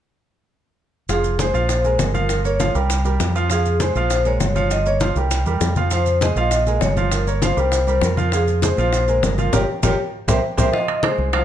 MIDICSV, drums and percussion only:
0, 0, Header, 1, 2, 480
1, 0, Start_track
1, 0, Key_signature, -4, "minor"
1, 0, Tempo, 301356
1, 1741, Time_signature, 4, 2, 24, 8
1, 18228, End_track
2, 0, Start_track
2, 0, Title_t, "Drums"
2, 1735, Note_on_c, 9, 70, 63
2, 1739, Note_on_c, 9, 63, 34
2, 1742, Note_on_c, 9, 60, 54
2, 1895, Note_off_c, 9, 70, 0
2, 1898, Note_off_c, 9, 63, 0
2, 1901, Note_off_c, 9, 60, 0
2, 1976, Note_on_c, 9, 63, 31
2, 1976, Note_on_c, 9, 70, 28
2, 2135, Note_off_c, 9, 63, 0
2, 2135, Note_off_c, 9, 70, 0
2, 2214, Note_on_c, 9, 63, 91
2, 2217, Note_on_c, 9, 60, 50
2, 2225, Note_on_c, 9, 70, 62
2, 2373, Note_off_c, 9, 63, 0
2, 2377, Note_off_c, 9, 60, 0
2, 2384, Note_off_c, 9, 70, 0
2, 2456, Note_on_c, 9, 60, 30
2, 2457, Note_on_c, 9, 63, 33
2, 2462, Note_on_c, 9, 70, 28
2, 2615, Note_off_c, 9, 60, 0
2, 2616, Note_off_c, 9, 63, 0
2, 2621, Note_off_c, 9, 70, 0
2, 2693, Note_on_c, 9, 60, 63
2, 2695, Note_on_c, 9, 70, 64
2, 2700, Note_on_c, 9, 63, 31
2, 2852, Note_off_c, 9, 60, 0
2, 2854, Note_off_c, 9, 70, 0
2, 2859, Note_off_c, 9, 63, 0
2, 2936, Note_on_c, 9, 60, 32
2, 2940, Note_on_c, 9, 70, 23
2, 2941, Note_on_c, 9, 63, 30
2, 3095, Note_off_c, 9, 60, 0
2, 3099, Note_off_c, 9, 70, 0
2, 3101, Note_off_c, 9, 63, 0
2, 3171, Note_on_c, 9, 60, 62
2, 3171, Note_on_c, 9, 61, 75
2, 3173, Note_on_c, 9, 63, 77
2, 3174, Note_on_c, 9, 70, 63
2, 3330, Note_off_c, 9, 60, 0
2, 3330, Note_off_c, 9, 61, 0
2, 3332, Note_off_c, 9, 63, 0
2, 3333, Note_off_c, 9, 70, 0
2, 3416, Note_on_c, 9, 63, 60
2, 3417, Note_on_c, 9, 70, 24
2, 3418, Note_on_c, 9, 60, 29
2, 3575, Note_off_c, 9, 63, 0
2, 3576, Note_off_c, 9, 70, 0
2, 3578, Note_off_c, 9, 60, 0
2, 3650, Note_on_c, 9, 60, 61
2, 3655, Note_on_c, 9, 63, 31
2, 3657, Note_on_c, 9, 70, 65
2, 3810, Note_off_c, 9, 60, 0
2, 3814, Note_off_c, 9, 63, 0
2, 3816, Note_off_c, 9, 70, 0
2, 3893, Note_on_c, 9, 60, 31
2, 3902, Note_on_c, 9, 70, 27
2, 3904, Note_on_c, 9, 63, 31
2, 4052, Note_off_c, 9, 60, 0
2, 4061, Note_off_c, 9, 70, 0
2, 4063, Note_off_c, 9, 63, 0
2, 4136, Note_on_c, 9, 70, 65
2, 4137, Note_on_c, 9, 60, 54
2, 4144, Note_on_c, 9, 63, 91
2, 4296, Note_off_c, 9, 60, 0
2, 4296, Note_off_c, 9, 70, 0
2, 4304, Note_off_c, 9, 63, 0
2, 4372, Note_on_c, 9, 60, 30
2, 4381, Note_on_c, 9, 63, 33
2, 4383, Note_on_c, 9, 70, 27
2, 4531, Note_off_c, 9, 60, 0
2, 4540, Note_off_c, 9, 63, 0
2, 4542, Note_off_c, 9, 70, 0
2, 4617, Note_on_c, 9, 60, 65
2, 4621, Note_on_c, 9, 63, 30
2, 4621, Note_on_c, 9, 70, 66
2, 4776, Note_off_c, 9, 60, 0
2, 4780, Note_off_c, 9, 63, 0
2, 4780, Note_off_c, 9, 70, 0
2, 4852, Note_on_c, 9, 60, 33
2, 4859, Note_on_c, 9, 63, 32
2, 4864, Note_on_c, 9, 70, 25
2, 5011, Note_off_c, 9, 60, 0
2, 5019, Note_off_c, 9, 63, 0
2, 5023, Note_off_c, 9, 70, 0
2, 5097, Note_on_c, 9, 60, 60
2, 5097, Note_on_c, 9, 61, 69
2, 5099, Note_on_c, 9, 63, 32
2, 5101, Note_on_c, 9, 70, 65
2, 5256, Note_off_c, 9, 60, 0
2, 5256, Note_off_c, 9, 61, 0
2, 5258, Note_off_c, 9, 63, 0
2, 5261, Note_off_c, 9, 70, 0
2, 5344, Note_on_c, 9, 70, 27
2, 5504, Note_off_c, 9, 70, 0
2, 5570, Note_on_c, 9, 60, 58
2, 5581, Note_on_c, 9, 63, 33
2, 5581, Note_on_c, 9, 70, 61
2, 5729, Note_off_c, 9, 60, 0
2, 5740, Note_off_c, 9, 63, 0
2, 5740, Note_off_c, 9, 70, 0
2, 5822, Note_on_c, 9, 63, 33
2, 5822, Note_on_c, 9, 70, 27
2, 5981, Note_off_c, 9, 70, 0
2, 5982, Note_off_c, 9, 63, 0
2, 6052, Note_on_c, 9, 60, 52
2, 6054, Note_on_c, 9, 63, 94
2, 6056, Note_on_c, 9, 70, 60
2, 6211, Note_off_c, 9, 60, 0
2, 6213, Note_off_c, 9, 63, 0
2, 6215, Note_off_c, 9, 70, 0
2, 6300, Note_on_c, 9, 60, 33
2, 6300, Note_on_c, 9, 70, 26
2, 6302, Note_on_c, 9, 63, 34
2, 6459, Note_off_c, 9, 70, 0
2, 6460, Note_off_c, 9, 60, 0
2, 6462, Note_off_c, 9, 63, 0
2, 6534, Note_on_c, 9, 70, 66
2, 6540, Note_on_c, 9, 60, 67
2, 6544, Note_on_c, 9, 63, 30
2, 6693, Note_off_c, 9, 70, 0
2, 6699, Note_off_c, 9, 60, 0
2, 6703, Note_off_c, 9, 63, 0
2, 6772, Note_on_c, 9, 60, 30
2, 6773, Note_on_c, 9, 70, 24
2, 6782, Note_on_c, 9, 63, 32
2, 6931, Note_off_c, 9, 60, 0
2, 6932, Note_off_c, 9, 70, 0
2, 6941, Note_off_c, 9, 63, 0
2, 7016, Note_on_c, 9, 60, 61
2, 7016, Note_on_c, 9, 61, 74
2, 7016, Note_on_c, 9, 70, 60
2, 7020, Note_on_c, 9, 63, 78
2, 7175, Note_off_c, 9, 60, 0
2, 7175, Note_off_c, 9, 61, 0
2, 7175, Note_off_c, 9, 70, 0
2, 7179, Note_off_c, 9, 63, 0
2, 7257, Note_on_c, 9, 70, 28
2, 7259, Note_on_c, 9, 63, 60
2, 7266, Note_on_c, 9, 60, 33
2, 7417, Note_off_c, 9, 70, 0
2, 7418, Note_off_c, 9, 63, 0
2, 7425, Note_off_c, 9, 60, 0
2, 7494, Note_on_c, 9, 70, 61
2, 7501, Note_on_c, 9, 63, 32
2, 7504, Note_on_c, 9, 60, 59
2, 7654, Note_off_c, 9, 70, 0
2, 7660, Note_off_c, 9, 63, 0
2, 7663, Note_off_c, 9, 60, 0
2, 7737, Note_on_c, 9, 70, 29
2, 7740, Note_on_c, 9, 63, 30
2, 7745, Note_on_c, 9, 60, 32
2, 7896, Note_off_c, 9, 70, 0
2, 7899, Note_off_c, 9, 63, 0
2, 7905, Note_off_c, 9, 60, 0
2, 7969, Note_on_c, 9, 70, 66
2, 7976, Note_on_c, 9, 63, 94
2, 7983, Note_on_c, 9, 60, 50
2, 8129, Note_off_c, 9, 70, 0
2, 8136, Note_off_c, 9, 63, 0
2, 8142, Note_off_c, 9, 60, 0
2, 8217, Note_on_c, 9, 70, 26
2, 8218, Note_on_c, 9, 63, 32
2, 8225, Note_on_c, 9, 60, 29
2, 8376, Note_off_c, 9, 70, 0
2, 8377, Note_off_c, 9, 63, 0
2, 8385, Note_off_c, 9, 60, 0
2, 8455, Note_on_c, 9, 70, 66
2, 8458, Note_on_c, 9, 63, 33
2, 8461, Note_on_c, 9, 60, 66
2, 8614, Note_off_c, 9, 70, 0
2, 8617, Note_off_c, 9, 63, 0
2, 8620, Note_off_c, 9, 60, 0
2, 8696, Note_on_c, 9, 63, 29
2, 8696, Note_on_c, 9, 70, 25
2, 8697, Note_on_c, 9, 60, 30
2, 8855, Note_off_c, 9, 63, 0
2, 8855, Note_off_c, 9, 70, 0
2, 8856, Note_off_c, 9, 60, 0
2, 8933, Note_on_c, 9, 70, 63
2, 8935, Note_on_c, 9, 60, 65
2, 8935, Note_on_c, 9, 61, 73
2, 8938, Note_on_c, 9, 63, 32
2, 9092, Note_off_c, 9, 70, 0
2, 9095, Note_off_c, 9, 60, 0
2, 9095, Note_off_c, 9, 61, 0
2, 9097, Note_off_c, 9, 63, 0
2, 9173, Note_on_c, 9, 70, 25
2, 9176, Note_on_c, 9, 63, 67
2, 9332, Note_off_c, 9, 70, 0
2, 9335, Note_off_c, 9, 63, 0
2, 9408, Note_on_c, 9, 70, 65
2, 9416, Note_on_c, 9, 60, 59
2, 9426, Note_on_c, 9, 63, 31
2, 9567, Note_off_c, 9, 70, 0
2, 9575, Note_off_c, 9, 60, 0
2, 9585, Note_off_c, 9, 63, 0
2, 9650, Note_on_c, 9, 70, 29
2, 9670, Note_on_c, 9, 63, 32
2, 9809, Note_off_c, 9, 70, 0
2, 9829, Note_off_c, 9, 63, 0
2, 9893, Note_on_c, 9, 60, 53
2, 9899, Note_on_c, 9, 70, 65
2, 9909, Note_on_c, 9, 63, 95
2, 10052, Note_off_c, 9, 60, 0
2, 10058, Note_off_c, 9, 70, 0
2, 10068, Note_off_c, 9, 63, 0
2, 10133, Note_on_c, 9, 60, 32
2, 10138, Note_on_c, 9, 70, 27
2, 10149, Note_on_c, 9, 63, 33
2, 10293, Note_off_c, 9, 60, 0
2, 10297, Note_off_c, 9, 70, 0
2, 10308, Note_off_c, 9, 63, 0
2, 10370, Note_on_c, 9, 60, 62
2, 10373, Note_on_c, 9, 70, 67
2, 10386, Note_on_c, 9, 63, 29
2, 10529, Note_off_c, 9, 60, 0
2, 10532, Note_off_c, 9, 70, 0
2, 10545, Note_off_c, 9, 63, 0
2, 10616, Note_on_c, 9, 70, 23
2, 10617, Note_on_c, 9, 60, 33
2, 10620, Note_on_c, 9, 63, 33
2, 10775, Note_off_c, 9, 70, 0
2, 10776, Note_off_c, 9, 60, 0
2, 10779, Note_off_c, 9, 63, 0
2, 10847, Note_on_c, 9, 60, 63
2, 10847, Note_on_c, 9, 61, 76
2, 10859, Note_on_c, 9, 63, 73
2, 10859, Note_on_c, 9, 70, 61
2, 11006, Note_off_c, 9, 60, 0
2, 11006, Note_off_c, 9, 61, 0
2, 11018, Note_off_c, 9, 63, 0
2, 11018, Note_off_c, 9, 70, 0
2, 11091, Note_on_c, 9, 60, 30
2, 11098, Note_on_c, 9, 63, 64
2, 11106, Note_on_c, 9, 70, 26
2, 11250, Note_off_c, 9, 60, 0
2, 11258, Note_off_c, 9, 63, 0
2, 11265, Note_off_c, 9, 70, 0
2, 11333, Note_on_c, 9, 60, 62
2, 11337, Note_on_c, 9, 70, 66
2, 11343, Note_on_c, 9, 63, 33
2, 11492, Note_off_c, 9, 60, 0
2, 11497, Note_off_c, 9, 70, 0
2, 11503, Note_off_c, 9, 63, 0
2, 11576, Note_on_c, 9, 60, 33
2, 11584, Note_on_c, 9, 70, 27
2, 11585, Note_on_c, 9, 63, 34
2, 11735, Note_off_c, 9, 60, 0
2, 11744, Note_off_c, 9, 70, 0
2, 11745, Note_off_c, 9, 63, 0
2, 11815, Note_on_c, 9, 60, 54
2, 11822, Note_on_c, 9, 63, 96
2, 11825, Note_on_c, 9, 70, 63
2, 11975, Note_off_c, 9, 60, 0
2, 11982, Note_off_c, 9, 63, 0
2, 11985, Note_off_c, 9, 70, 0
2, 12056, Note_on_c, 9, 60, 30
2, 12061, Note_on_c, 9, 63, 30
2, 12066, Note_on_c, 9, 70, 26
2, 12215, Note_off_c, 9, 60, 0
2, 12220, Note_off_c, 9, 63, 0
2, 12225, Note_off_c, 9, 70, 0
2, 12293, Note_on_c, 9, 60, 64
2, 12301, Note_on_c, 9, 63, 31
2, 12306, Note_on_c, 9, 70, 65
2, 12452, Note_off_c, 9, 60, 0
2, 12461, Note_off_c, 9, 63, 0
2, 12465, Note_off_c, 9, 70, 0
2, 12535, Note_on_c, 9, 60, 30
2, 12542, Note_on_c, 9, 63, 31
2, 12548, Note_on_c, 9, 70, 24
2, 12694, Note_off_c, 9, 60, 0
2, 12702, Note_off_c, 9, 63, 0
2, 12707, Note_off_c, 9, 70, 0
2, 12765, Note_on_c, 9, 60, 61
2, 12765, Note_on_c, 9, 61, 75
2, 12778, Note_on_c, 9, 63, 32
2, 12791, Note_on_c, 9, 70, 67
2, 12925, Note_off_c, 9, 60, 0
2, 12925, Note_off_c, 9, 61, 0
2, 12938, Note_off_c, 9, 63, 0
2, 12950, Note_off_c, 9, 70, 0
2, 13019, Note_on_c, 9, 63, 65
2, 13033, Note_on_c, 9, 70, 28
2, 13178, Note_off_c, 9, 63, 0
2, 13193, Note_off_c, 9, 70, 0
2, 13253, Note_on_c, 9, 60, 60
2, 13266, Note_on_c, 9, 63, 34
2, 13268, Note_on_c, 9, 70, 65
2, 13412, Note_off_c, 9, 60, 0
2, 13425, Note_off_c, 9, 63, 0
2, 13428, Note_off_c, 9, 70, 0
2, 13502, Note_on_c, 9, 70, 26
2, 13505, Note_on_c, 9, 63, 30
2, 13661, Note_off_c, 9, 70, 0
2, 13664, Note_off_c, 9, 63, 0
2, 13733, Note_on_c, 9, 60, 56
2, 13745, Note_on_c, 9, 70, 64
2, 13747, Note_on_c, 9, 63, 96
2, 13893, Note_off_c, 9, 60, 0
2, 13905, Note_off_c, 9, 70, 0
2, 13907, Note_off_c, 9, 63, 0
2, 13973, Note_on_c, 9, 60, 33
2, 13987, Note_on_c, 9, 63, 31
2, 13987, Note_on_c, 9, 70, 25
2, 14132, Note_off_c, 9, 60, 0
2, 14147, Note_off_c, 9, 63, 0
2, 14147, Note_off_c, 9, 70, 0
2, 14217, Note_on_c, 9, 60, 65
2, 14223, Note_on_c, 9, 63, 32
2, 14229, Note_on_c, 9, 70, 66
2, 14377, Note_off_c, 9, 60, 0
2, 14383, Note_off_c, 9, 63, 0
2, 14388, Note_off_c, 9, 70, 0
2, 14459, Note_on_c, 9, 63, 34
2, 14462, Note_on_c, 9, 60, 32
2, 14464, Note_on_c, 9, 70, 25
2, 14619, Note_off_c, 9, 63, 0
2, 14621, Note_off_c, 9, 60, 0
2, 14623, Note_off_c, 9, 70, 0
2, 14701, Note_on_c, 9, 60, 63
2, 14701, Note_on_c, 9, 61, 71
2, 14704, Note_on_c, 9, 63, 76
2, 14708, Note_on_c, 9, 70, 64
2, 14861, Note_off_c, 9, 60, 0
2, 14861, Note_off_c, 9, 61, 0
2, 14863, Note_off_c, 9, 63, 0
2, 14867, Note_off_c, 9, 70, 0
2, 14940, Note_on_c, 9, 63, 66
2, 14943, Note_on_c, 9, 60, 32
2, 14947, Note_on_c, 9, 70, 25
2, 15100, Note_off_c, 9, 63, 0
2, 15102, Note_off_c, 9, 60, 0
2, 15107, Note_off_c, 9, 70, 0
2, 15177, Note_on_c, 9, 64, 91
2, 15178, Note_on_c, 9, 61, 93
2, 15183, Note_on_c, 9, 70, 84
2, 15337, Note_off_c, 9, 61, 0
2, 15337, Note_off_c, 9, 64, 0
2, 15343, Note_off_c, 9, 70, 0
2, 15657, Note_on_c, 9, 70, 88
2, 15660, Note_on_c, 9, 61, 91
2, 15663, Note_on_c, 9, 64, 93
2, 15817, Note_off_c, 9, 70, 0
2, 15819, Note_off_c, 9, 61, 0
2, 15823, Note_off_c, 9, 64, 0
2, 16380, Note_on_c, 9, 70, 84
2, 16381, Note_on_c, 9, 64, 90
2, 16382, Note_on_c, 9, 61, 86
2, 16539, Note_off_c, 9, 70, 0
2, 16540, Note_off_c, 9, 64, 0
2, 16541, Note_off_c, 9, 61, 0
2, 16855, Note_on_c, 9, 64, 86
2, 16855, Note_on_c, 9, 70, 89
2, 16857, Note_on_c, 9, 61, 86
2, 17014, Note_off_c, 9, 64, 0
2, 17015, Note_off_c, 9, 70, 0
2, 17017, Note_off_c, 9, 61, 0
2, 17097, Note_on_c, 9, 63, 34
2, 17099, Note_on_c, 9, 60, 65
2, 17256, Note_off_c, 9, 63, 0
2, 17259, Note_off_c, 9, 60, 0
2, 17331, Note_on_c, 9, 63, 33
2, 17336, Note_on_c, 9, 65, 64
2, 17490, Note_off_c, 9, 63, 0
2, 17495, Note_off_c, 9, 65, 0
2, 17566, Note_on_c, 9, 63, 97
2, 17575, Note_on_c, 9, 60, 51
2, 17581, Note_on_c, 9, 65, 96
2, 17726, Note_off_c, 9, 63, 0
2, 17735, Note_off_c, 9, 60, 0
2, 17740, Note_off_c, 9, 65, 0
2, 17807, Note_on_c, 9, 63, 31
2, 17815, Note_on_c, 9, 60, 31
2, 17966, Note_off_c, 9, 63, 0
2, 17974, Note_off_c, 9, 60, 0
2, 18048, Note_on_c, 9, 60, 63
2, 18053, Note_on_c, 9, 65, 90
2, 18055, Note_on_c, 9, 63, 32
2, 18208, Note_off_c, 9, 60, 0
2, 18212, Note_off_c, 9, 65, 0
2, 18214, Note_off_c, 9, 63, 0
2, 18228, End_track
0, 0, End_of_file